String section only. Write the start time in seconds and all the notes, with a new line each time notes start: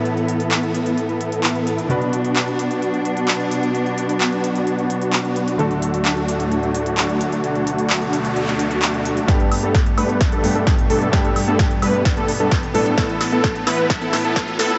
Already playing: A2 E3 B3
1.90 B2 F#3 D4
5.59 D2 A2
7.44 B2
9.28 B2 G3 A3
11.13 B3
12.98 A2 E3